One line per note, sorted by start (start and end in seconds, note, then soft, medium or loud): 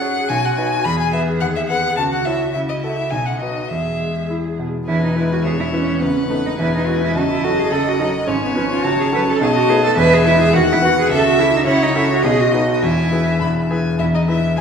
0.00 0.27 F#2 soft
0.00 0.27 F#4 soft
0.00 0.32 G#4 medium
0.00 0.27 C#5 soft
0.00 0.30 F#5 medium
0.29 0.84 B1 soft
0.29 0.87 F#4 medium
0.29 0.47 G#5 medium
0.45 0.58 F#5 medium
0.57 0.83 D#4 soft
0.57 0.83 B4 soft
0.57 0.86 G#5 medium
0.84 1.40 E2 medium
0.84 1.99 G#4 medium
0.84 0.99 B5 medium
1.00 1.12 G#5 medium
1.13 1.39 B3 soft
1.13 1.39 B4 soft
1.13 1.21 E5 medium
1.40 1.96 D#2 soft
1.40 1.46 F#5 medium
1.56 1.61 E5 medium
1.68 1.95 B3 soft
1.68 1.95 B4 soft
1.68 1.96 F#5 medium
1.97 2.53 C#2 soft
1.97 2.54 F#4 medium
1.97 2.03 A5 medium
2.12 2.27 F#5 medium
2.26 2.52 E4 soft
2.26 2.52 C#5 soft
2.26 2.53 E5 soft
2.53 3.11 C#2 soft
2.53 3.14 E4 soft
2.53 2.59 E5 medium
2.69 2.75 D#5 medium
2.81 3.10 F#4 soft
2.81 3.10 A4 soft
2.81 3.12 E5 medium
3.11 3.69 B1 soft
3.11 3.70 D#4 soft
3.11 3.27 G#5 medium
3.26 3.39 F#5 soft
3.39 3.68 F#4 soft
3.39 3.68 B4 soft
3.39 3.70 D#5 soft
3.69 4.85 E2 soft
3.69 4.57 G#4 soft
3.69 4.29 E5 soft
4.00 4.47 G#3 soft
4.30 4.77 E4 soft
4.59 4.88 B2 soft
4.87 5.16 E1 soft
4.87 5.16 E2 soft
4.87 5.01 E4 medium
4.87 5.46 B4 soft
4.87 5.44 G#5 soft
5.04 5.17 D#4 medium
5.16 5.42 G#3 soft
5.16 5.42 E4 soft
5.16 5.23 E4 medium
5.16 5.42 B4 soft
5.32 5.37 F#4 medium
5.43 5.73 E1 soft
5.43 5.73 E2 soft
5.43 5.51 G#4 medium
5.43 6.03 C#5 soft
5.43 6.00 E5 soft
5.60 5.65 E4 soft
5.72 5.99 G#3 soft
5.72 6.02 C#4 medium
5.72 5.99 E4 soft
5.72 5.99 B4 soft
6.00 6.30 F#1 soft
6.00 6.30 F#2 soft
6.00 6.15 B3 medium
6.00 7.15 B4 medium
6.00 6.57 F#5 soft
6.16 6.22 C#4 medium
6.30 6.56 A3 soft
6.30 6.36 B3 medium
6.30 6.56 D#4 soft
6.30 6.56 B4 soft
6.46 6.51 D#4 medium
6.59 6.87 E1 soft
6.59 6.87 E2 soft
6.59 6.73 E4 medium
6.59 7.17 G#5 medium
6.75 6.89 D#4 medium
6.87 7.13 G#3 soft
6.87 7.13 E4 soft
6.87 7.01 F#4 medium
6.87 7.13 B4 soft
7.03 7.16 E4 medium
7.15 7.43 F#1 soft
7.15 7.43 F#2 soft
7.15 7.22 F#4 medium
7.15 8.29 D#5 medium
7.15 7.73 A5 medium
7.32 7.46 E4 medium
7.44 7.69 F#3 soft
7.44 7.69 C#4 soft
7.44 7.61 F#4 medium
7.44 7.70 A4 soft
7.60 7.74 G#4 medium
7.71 7.99 F#1 soft
7.71 7.99 F#2 soft
7.71 7.90 A4 medium
7.71 8.27 F#5 medium
7.88 7.99 F#4 medium
7.99 8.25 F#3 soft
7.99 8.25 C#4 soft
7.99 8.08 D#4 medium
7.99 8.25 A4 soft
8.27 8.55 G#1 medium
8.27 8.55 G#2 soft
8.27 8.42 C#4 medium
8.27 9.40 C#5 medium
8.27 8.86 G#5 medium
8.44 8.50 B3 medium
8.55 8.81 F3 soft
8.55 8.82 C#4 soft
8.55 8.71 C#4 medium
8.55 8.82 B4 soft
8.72 8.87 F4 medium
8.84 9.12 F#1 medium
8.84 9.12 F#2 medium
8.84 8.99 F#4 medium
8.84 9.41 A5 medium
9.00 9.06 G#4 medium
9.12 9.38 F#3 soft
9.12 9.38 C#4 soft
9.12 9.38 A4 soft
9.12 9.20 B4 medium
9.29 9.42 A4 medium
9.41 9.68 B1 medium
9.41 9.68 B2 soft
9.41 9.48 G#4 loud
9.41 9.96 D#5 medium
9.41 9.98 A5 medium
9.57 9.71 F#4 medium
9.69 9.94 A3 soft
9.69 9.95 D#4 soft
9.69 9.83 G#4 medium
9.69 9.95 B4 medium
9.85 9.98 A4 medium
9.96 10.24 E1 medium
9.96 10.24 E2 medium
9.96 10.15 B4 loud
9.96 10.55 E5 medium
9.96 10.52 G#5 medium
10.14 10.26 G#4 medium
10.25 10.51 G#3 soft
10.25 10.51 E4 soft
10.25 10.40 E4 medium
10.25 10.51 B4 medium
10.42 10.55 G#4 medium
10.52 10.81 D#2 medium
10.52 10.81 D#3 medium
10.52 10.61 F#4 loud
10.52 11.11 F#5 medium
10.52 11.10 F#5 medium
10.72 10.77 E4 medium
10.82 11.07 B3 soft
10.82 11.08 F#4 medium
10.82 10.90 F#4 medium
10.82 11.08 B4 medium
11.00 11.12 G#4 medium
11.09 11.38 C#2 medium
11.09 11.38 C#3 medium
11.09 11.26 A4 loud
11.09 11.65 E5 medium
11.09 11.66 E5 medium
11.27 11.42 F#4 medium
11.39 11.64 C#4 medium
11.39 11.64 E4 soft
11.39 11.54 E4 medium
11.39 11.65 A4 medium
11.56 11.61 D#4 medium
11.66 11.95 C#2 medium
11.66 11.95 C#3 medium
11.66 11.84 E4 medium
11.66 12.24 C#5 medium
11.66 11.93 F#5 medium
11.83 11.97 D#4 medium
11.95 12.21 C#4 soft
11.95 12.10 E4 medium
11.95 12.21 F#4 soft
11.95 12.22 A4 medium
11.95 12.22 E5 medium
12.11 12.27 F#4 medium
12.23 12.52 B1 medium
12.23 12.52 B2 medium
12.23 12.42 G#4 medium
12.23 12.81 D#5 medium
12.23 12.84 D#5 medium
12.41 12.55 F#4 medium
12.53 12.80 D#4 soft
12.53 12.68 D#4 medium
12.53 12.80 F#4 soft
12.53 12.80 B4 soft
12.70 12.86 F#4 medium
12.82 13.11 E1 soft
12.82 13.11 E2 soft
12.82 13.42 E4 medium
12.82 13.68 E5 medium
12.82 13.36 G#5 medium
13.12 13.39 E4 soft
13.12 13.39 G#4 soft
13.12 13.39 B4 soft
13.40 13.70 E1 soft
13.40 13.70 E2 soft
13.40 13.48 B5 medium
13.70 13.97 E4 soft
13.70 13.97 G#4 soft
13.70 13.97 B4 soft
13.70 13.99 G#5 soft
13.99 14.28 E1 soft
13.99 14.28 E2 soft
13.99 14.06 E4 medium
13.99 14.16 E4 soft
13.99 14.05 E5 medium
14.13 14.28 D#4 soft
14.13 14.31 D#4 soft
14.13 14.20 D#5 soft
14.28 14.54 E4 soft
14.28 14.37 E4 soft
14.28 14.59 E4 soft
14.28 14.55 G#4 soft
14.28 14.55 B4 soft
14.28 14.56 E5 medium
14.57 14.61 E1 soft
14.57 14.61 E2 soft
14.57 14.61 G#4 medium
14.57 14.61 G#4 soft
14.57 14.61 G#5 medium